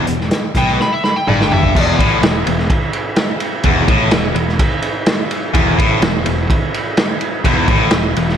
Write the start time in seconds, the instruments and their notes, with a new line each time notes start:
Already playing: tonewheel organ B3 E4 G#4
0.07 picked electric bass E1, overdriven electric guitar E2, closed hi-hat
0.20 snare
0.31 snare, closed hi-hat
0.55 picked electric bass B1, overdriven electric guitar B2, electric slide guitar G5, kick, closed hi-hat
0.68 snare
0.80 electric slide guitar B5, snare
0.93 electric slide guitar E5
1.04 electric slide guitar B5, snare
1.16 electric slide guitar G5
1.27 picked electric bass G1, overdriven electric guitar G2, electric slide guitar D5, mid tom
1.41 electric slide guitar G5, snare
1.52 electric slide guitar E5, floor tom
1.63 kick
1.74 picked electric bass E1, overdriven electric guitar E2, tonewheel organ F4 A4 C5 F5, kick, crash
1.90 tonewheel organ E4 G#4 B4 E5
1.99 picked electric bass A1, overdriven electric guitar A2, kick, ride
2.21 picked electric bass E1, overdriven electric guitar E2, snare, ride
2.46 picked electric bass E1, overdriven electric guitar E2, ride
2.59 snare
2.70 kick, ride
2.93 ride
3.16 snare, ride
3.40 ride
3.64 picked electric bass E1, overdriven electric guitar E2, kick, ride
3.88 picked electric bass A1, overdriven electric guitar A2, kick, ride
4.11 picked electric bass E1, overdriven electric guitar E2, snare, ride
4.34 picked electric bass E1, overdriven electric guitar E2, ride
4.49 snare
4.59 kick, ride
4.82 ride
5.06 snare, ride
5.31 ride
5.53 picked electric bass E1, overdriven electric guitar E2, tonewheel organ E4 G#4 B4 E5, kick, ride
5.78 picked electric bass A1, overdriven electric guitar A2, kick, ride
6.01 picked electric bass E1, overdriven electric guitar E2, snare, ride
6.26 picked electric bass E1, overdriven electric guitar E2, ride
6.50 kick, ride
6.74 ride
6.97 snare, ride
7.21 ride
7.44 picked electric bass E1, overdriven electric guitar E2, kick, ride
7.68 picked electric bass A1, overdriven electric guitar A2, kick, ride
7.91 picked electric bass E1, overdriven electric guitar E2, snare, ride
8.16 picked electric bass E1, overdriven electric guitar E2, ride
8.29 snare